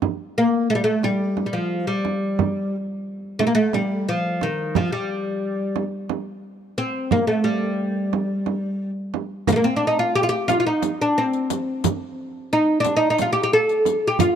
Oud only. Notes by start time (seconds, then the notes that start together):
0.38 A#3
0.70 A3
0.75 G3
0.84 A3
1.04 G3
1.46 G3
1.53 F3
1.87 G3
3.39 A3
3.47 A#3
3.55 A3
3.74 G3
4.09 F3
4.43 D#3
4.76 F3
4.92 G3
6.78 C4
7.12 A#3
7.27 A3
7.44 G3
9.48 A#3
9.52 A3 A#3
9.64 C4
9.76 D4
9.87 D#4
9.99 F4
10.15 G4
10.23 F4
10.29 G4
10.48 F4
10.60 F4
10.67 D#4
11.01 D4
11.18 C4
12.53 D#4
12.80 D4
12.96 D#4
13.10 D#4
13.22 F4
13.33 G4
13.43 G4
13.53 A4
14.07 G4
14.20 F4